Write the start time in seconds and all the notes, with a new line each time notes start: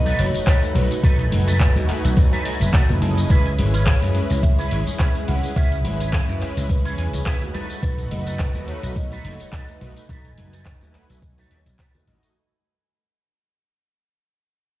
Already playing: B1 A3 D#4 F#4 B4 C#5 D#5
0.05 D#4 F#4 A4 B4, closed hi-hat, tambourine
0.19 F#1 C#5, open hi-hat
0.34 A3 D#4 F#4 C#5, closed hi-hat, tambourine, high conga
0.46 D#4 F#4 A4 B4, kick, clap, closed hi-hat, tambourine
0.62 A3 D#4 F#4 B4, closed hi-hat, tambourine
0.75 B1 B4 G#5, muted clean electric guitar stroke, open hi-hat, high conga
0.90 A3 D#4 F#4 B4, muted clean electric guitar stroke, closed hi-hat, tambourine
1.03 B1 D#4 F#4 A4 B4, kick, closed hi-hat, tambourine
1.19 closed hi-hat, tambourine
1.31 F#1 A3 D#4 F#4 B4, open hi-hat, high conga
1.47 D#4 F#4 A4 B4, closed hi-hat, tambourine
1.60 kick, clap, closed hi-hat, tambourine
1.75 D#2 A3 D#4 F#4 B4, tambourine, high conga
1.89 muted slap bass stroke, clap, open hi-hat
2.05 B1, closed hi-hat, tambourine
2.16 D#2 A3 D#4 F#4 C#5, kick, closed hi-hat, tambourine, high conga
2.32 D#4 F#4 A4 B4, closed hi-hat, tambourine
2.45 D#5, open hi-hat
2.60 F#1 E5, closed hi-hat, tambourine, high conga
2.73 D#4 F#4 A4 B4 F#5, kick, clap, closed hi-hat, tambourine
2.89 F#1 A3 D#4 F#4 B4, closed hi-hat, tambourine, low conga
3.02 G#3 C#4 E4 D#5 A5, muted clean electric guitar stroke, open hi-hat, high conga
3.17 muted clean electric guitar stroke, closed hi-hat, tambourine
3.30 C#2 G#3 C#4 E4 G#4 B4, kick, closed hi-hat, tambourine
3.46 closed hi-hat, tambourine
3.58 G#1 G#3 C#4 E4 B4, open hi-hat, high conga
3.73 C#4 E4 G#4 B4, closed hi-hat, tambourine
3.87 C#5, kick, clap, closed hi-hat, tambourine
4.02 F#2 G#3 C#4 E4 B4, tambourine, high conga
4.15 open hi-hat
4.30 C#2, muted clean electric guitar stroke, closed hi-hat, tambourine
4.43 G#3 C#4 E4 C#5 E5, kick, closed hi-hat, tambourine, high conga
4.58 C#4 E4 G#4 B4, closed hi-hat, tambourine
4.71 G#1, open hi-hat
4.87 G#3 C#4 E4 C#5, closed hi-hat, tambourine, high conga
4.99 C#4 E4 G#4 B4, kick, clap, closed hi-hat, tambourine
5.15 G#3 C#4 E4 B4, closed hi-hat, tambourine
5.27 C#2 F#5, muted clean electric guitar stroke, open hi-hat, high conga
5.43 G#3 C#4 E4 B4, muted clean electric guitar stroke, closed hi-hat, tambourine
5.56 C#2 C#4 E4 G#4 B4 E5, kick, closed hi-hat, tambourine
5.72 closed hi-hat, tambourine
5.84 G#1 G#3 C#4 E4 B4, open hi-hat, high conga
6.00 C#4 E4 G#4 B4, closed hi-hat, tambourine
6.13 kick, clap, closed hi-hat, tambourine
6.28 F#2 G#3 C#4 E4 B4, tambourine, high conga
6.41 C#5, muted slap bass stroke, clap, open hi-hat
6.57 C#2, closed hi-hat, tambourine
6.69 G#3 C#4 E4 B4 C#5, kick, closed hi-hat, tambourine, high conga
6.84 C#4 E4 G#4 C#5, closed hi-hat, tambourine
6.98 E2 G#5, open hi-hat
7.13 C#2 G#3 C#4 E4 C#5, closed hi-hat, tambourine, high conga
7.26 C#4 E4 G#4 B4 D#5, kick, clap, closed hi-hat, tambourine
7.42 A3 D#4 F#4 B4, closed hi-hat, tambourine, low conga
7.53 A3 D#4 F#4 A4 B4, open hi-hat, high conga
7.70 A3 D#4 F#4 B4, closed hi-hat, tambourine
7.83 B1 B4, kick, closed hi-hat, tambourine
7.98 closed hi-hat, tambourine
8.11 F#1 A3 D#4 F#4 B4 D#5, open hi-hat, high conga
8.26 D#4 F#4 A4 B4, closed hi-hat, tambourine
8.39 B4, kick, clap, closed hi-hat, tambourine
8.54 D#2 A3 D#4 F#4 B4, tambourine, high conga
8.68 C#5, open hi-hat
8.83 B1, closed hi-hat, tambourine
8.96 A3 D#4 F#4 C#5 D#5, kick, closed hi-hat, tambourine, high conga
9.11 D#4 F#4 A4 B4, closed hi-hat, tambourine
9.24 F#1, open hi-hat
9.40 A3 D#4 F#4 C#5, closed hi-hat, tambourine, high conga
9.52 D#4 F#4 A4 B4, kick, clap, closed hi-hat, tambourine
9.68 A3 D#4 F#4 B4, closed hi-hat, tambourine
9.81 B1 G#5, muted clean electric guitar stroke, open hi-hat, high conga
9.96 A3 D#4 F#4 B4, closed hi-hat, tambourine
10.09 B1 D#4 F#4 A4 B4, kick, closed hi-hat, tambourine
10.25 closed hi-hat, tambourine
10.38 F#1 A3 D#4 F#4 B4, open hi-hat, high conga
10.53 D#4 F#4 A4 B4, closed hi-hat, tambourine
10.66 kick, clap, closed hi-hat, tambourine
10.81 D#2 A3 D#4 F#4 B4, closed hi-hat, tambourine, high conga
10.94 muted slap bass stroke, clap, open hi-hat
11.09 B1, muted clean electric guitar stroke, closed hi-hat, tambourine
11.22 A3 D#4 F#4 C#5, kick, closed hi-hat, tambourine, high conga
11.38 D#4 F#4 A4 B4, closed hi-hat, tambourine
11.51 D#2, open hi-hat
11.66 B1, closed hi-hat, tambourine, high conga
11.79 D#4 F#4 A4 B4, kick, clap, closed hi-hat, tambourine
11.94 A3 D#4 F#4 B4, closed hi-hat, tambourine, low conga
12.07 A1 A3 D#4 F#4 D#5, muted clean electric guitar stroke, open hi-hat, high conga
12.23 closed hi-hat, tambourine